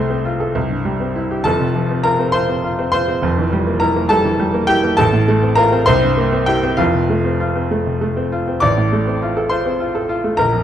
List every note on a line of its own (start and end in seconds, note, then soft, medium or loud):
0.00 0.52 C2 medium
0.00 0.58 C3 medium
0.00 0.19 A3 medium
0.00 1.11 C5 medium
0.00 1.15 C6 loud
0.10 0.34 C4 medium
0.25 0.49 F4 medium
0.40 0.55 A4 medium
0.55 1.43 C2 medium
0.70 0.95 G2 medium
0.85 1.10 G3 medium
1.00 1.25 C4 medium
1.16 1.40 E4 medium
1.31 1.46 G4 medium
1.44 3.19 F1 medium
1.44 3.20 F2 medium
1.44 2.01 A4 medium
1.44 2.05 A5 loud
1.60 1.85 C3 medium
1.75 1.99 F3 medium
1.90 2.14 C4 medium
2.04 2.29 F4 medium
2.04 2.33 A#4 medium
2.04 2.34 A#5 loud
2.19 2.44 C4 medium
2.32 2.58 F4 medium
2.32 2.89 C5 medium
2.32 2.90 C6 loud
2.49 2.73 C4 medium
2.64 2.88 F4 medium
2.79 3.03 C4 medium
2.92 3.18 F4 medium
2.92 3.78 C5 medium
2.92 3.81 C6 loud
3.08 3.24 C4 medium
3.22 4.94 F1 medium
3.22 4.95 F2 medium
3.38 3.62 E3 medium
3.53 3.76 G3 medium
3.67 3.90 A#3 medium
3.80 4.05 E4 medium
3.80 4.09 A#4 medium
3.80 4.10 A#5 loud
3.96 4.20 A#3 medium
4.09 4.34 G3 medium
4.09 4.65 A4 medium
4.09 4.68 A5 loud
4.25 4.49 E3 medium
4.40 4.63 G3 medium
4.54 4.78 A#3 medium
4.67 4.93 E4 medium
4.67 4.96 G4 medium
4.67 4.98 G5 loud
4.83 4.99 A#3 medium
4.97 5.85 A1 medium
4.97 5.54 A4 medium
4.97 5.57 A5 loud
5.13 5.37 A2 medium
5.28 5.52 A3 medium
5.42 5.67 C4 medium
5.55 5.81 F4 medium
5.55 5.85 A#4 loud
5.55 5.87 A#5 loud
5.72 5.87 C4 medium
5.86 6.76 C2 loud
5.86 6.43 C5 loud
5.86 6.47 C6 loud
6.02 6.27 G2 medium
6.17 6.42 A#3 medium
6.33 6.57 C4 medium
6.46 6.72 E4 medium
6.46 6.76 G4 medium
6.46 6.78 G5 loud
6.63 6.79 C4 medium
6.77 8.58 F1 medium
6.77 8.59 F2 medium
6.77 7.39 F4 medium
6.77 7.70 F5 loud
6.94 7.18 C3 medium
7.09 7.34 A3 medium
7.25 7.49 C4 medium
7.40 7.65 F4 medium
7.55 7.80 C4 medium
7.71 7.96 A3 medium
7.86 8.11 C3 medium
8.01 8.26 A3 medium
8.17 8.42 C4 medium
8.32 8.57 F4 medium
8.48 8.63 C4 medium
8.60 10.35 A1 medium
8.60 9.47 D5 medium
8.60 9.50 D6 loud
8.77 9.01 A2 medium
8.93 9.16 A3 medium
9.07 9.31 C4 medium
9.22 9.46 F4 medium
9.37 9.60 A4 medium
9.49 9.75 F4 medium
9.49 10.34 C5 medium
9.49 10.38 C6 medium
9.66 9.89 C4 medium
9.80 10.04 F4 medium
9.95 10.18 A4 medium
10.09 10.33 F4 medium
10.24 10.39 A3 medium
10.37 10.63 A#1 medium
10.37 10.63 A#4 medium
10.37 10.63 A#5 loud
10.53 10.63 F2 medium